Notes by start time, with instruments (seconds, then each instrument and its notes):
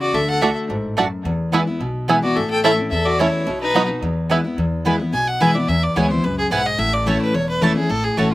Already playing: steel-string acoustic guitar C#3
0.01 fiddle F#4 D5
0.14 upright bass D2, steel-string acoustic guitar D3, fiddle A4 E5
0.28 fiddle A4 F#5
0.41 steel-string acoustic guitar D3 A3 D4 F#4, mandolin A3 F#4 D5 A5, five-string banjo A3 D4 F#4, fiddle A4 E5
0.69 upright bass A1, steel-string acoustic guitar G#2
0.97 steel-string acoustic guitar F#2, mandolin A3 F#4 D5 A5, five-string banjo A3 D4 F#4
1.25 upright bass E2, steel-string acoustic guitar E2
1.52 steel-string acoustic guitar E3 G#3 B3 E4, mandolin B3 E4 B4 G#5, five-string banjo B3 E4
1.67 steel-string acoustic guitar B3 E4
1.80 upright bass B1, steel-string acoustic guitar B2
2.08 steel-string acoustic guitar E3 G#3 B3 E4, mandolin B3 E4 B4 G#5, five-string banjo B3 E4
2.22 steel-string acoustic guitar B3 E4, fiddle F#4 D5
2.36 upright bass A1, steel-string acoustic guitar A2, fiddle A4 E5
2.50 fiddle A4 G5
2.64 steel-string acoustic guitar E3 A3 C#4 E4, mandolin A3 E4 C#5 A5, five-string banjo A3 C#4 E4, fiddle A4 E5
2.78 steel-string acoustic guitar C#4 E4
2.91 upright bass E2, steel-string acoustic guitar E2, fiddle A4 E5
3.05 fiddle F#4 D5
3.19 steel-string acoustic guitar E3 A3 C#4 E4, mandolin A3 E4 C#5 A5, five-string banjo A3 C#4 E4, fiddle E4 C#5
3.47 upright bass B1, steel-string acoustic guitar B2
3.61 fiddle D#4 B4
3.74 steel-string acoustic guitar F#3 B3 D#4 F#4, mandolin B3 F#4 D#5 B5, five-string banjo B3 D#4 F#4
3.89 steel-string acoustic guitar D#4 F#4
4.02 upright bass E2, steel-string acoustic guitar E2
4.30 steel-string acoustic guitar E3 G#3 B3 E4, mandolin B3 E4 B4 G#5, five-string banjo B3 E4
4.44 steel-string acoustic guitar B3 E4
4.58 upright bass E2, steel-string acoustic guitar E2
4.85 steel-string acoustic guitar E3 G#3 B3 E4, mandolin B3 E4 B4 G#5
4.99 steel-string acoustic guitar B3 E4
5.13 upright bass B1, steel-string acoustic guitar B2, fiddle G#5
5.28 fiddle F#5
5.40 steel-string acoustic guitar E3 G#3 B3 E4, mandolin B3 E4 B4 G#5, fiddle E5
5.55 steel-string acoustic guitar B3 E4, fiddle D5
5.68 upright bass E2, steel-string acoustic guitar E2, fiddle E5
5.83 fiddle D5
5.96 upright bass D2, steel-string acoustic guitar E3 G#3 B3 E4, mandolin B3 E4 B4 G#5, fiddle C#5
6.10 steel-string acoustic guitar B3 E4, fiddle C5
6.24 upright bass C#2, steel-string acoustic guitar F#2, fiddle B4
6.38 fiddle G#4
6.51 upright bass B1, steel-string acoustic guitar G#2, mandolin B3 E4 B4 G#5, fiddle F#5
6.66 fiddle D#5
6.79 upright bass A1, steel-string acoustic guitar A2, fiddle E5
6.93 fiddle D5
7.06 steel-string acoustic guitar E3 A3 C#4 E4, mandolin A3 E4 C#5 A5, fiddle C#5
7.22 fiddle B4
7.34 upright bass E1, steel-string acoustic guitar E2, fiddle C#5
7.49 fiddle B4
7.61 steel-string acoustic guitar E3 A3 C#4 E4, mandolin A3 E4 C#5 A5, fiddle A4
7.76 steel-string acoustic guitar C#4 E4, fiddle G#4
7.89 upright bass A1, steel-string acoustic guitar A2, fiddle A4
8.04 fiddle G#4
8.17 upright bass A1, steel-string acoustic guitar E3 A3 C#4 E4, mandolin A3 E4 C#5 A5, fiddle F#4